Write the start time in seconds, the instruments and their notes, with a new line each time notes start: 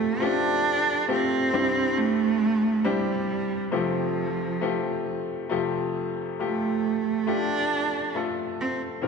Already playing: upright piano F2 C3 A3 C4 F4 G4, cello A3
0.20 upright piano A3 C4 F4 G4, cello D4
1.08 upright piano A3 C4 F4 G4, cello C4
1.53 upright piano C2 G2 C4 D4 E4 G4
1.97 cello A3
2.84 cello G3, upright piano C4 D4 E4 G4
3.72 upright piano F2 C3 A3 C4 F4 G4, cello F3
4.61 upright piano A3 C4 F4 G4
5.49 upright piano F2 C3 A3 F4 G4
6.39 upright piano A3 F4 G4, cello A3
7.27 upright piano A3 F4 G4, cello D4
8.15 upright piano A3 F4 A4
8.61 cello C4
9.02 upright piano A#2 F3 C4 C#4 A#4